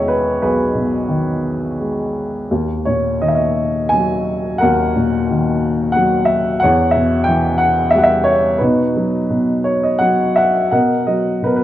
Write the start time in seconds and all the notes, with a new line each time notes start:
Already playing: E2 B2 D#3 G#3 C#5 D#5 E5 G#5
0.08 B4
0.42 B1 G#4 B4
0.75 B2
1.09 D#3
1.80 G#3
2.51 D#2
2.85 A#2 C#5
3.22 D#3 D#5
3.28 E5
3.35 D#5
3.89 G#5
3.94 F#3
4.58 A#4 F#5
4.63 D#2
4.96 A#2
5.31 D#3
5.92 F#5
5.96 F#3
6.25 E5
6.60 C#5 F#5
6.64 E2
6.91 E5
6.95 B2
7.24 G5
7.28 E3
7.58 F#5
7.91 E5
7.95 G3 F#5
8.04 E5
8.24 C#5
8.58 B2 D#4 B4
8.96 F#3
9.30 B2
9.64 C#5
9.83 D#5
9.99 F#3 F#5
10.36 E5 F#5
10.71 B2 A#4 D#5 F#5
11.07 F#3 D#5
11.42 B2 A#4 B4
11.56 B4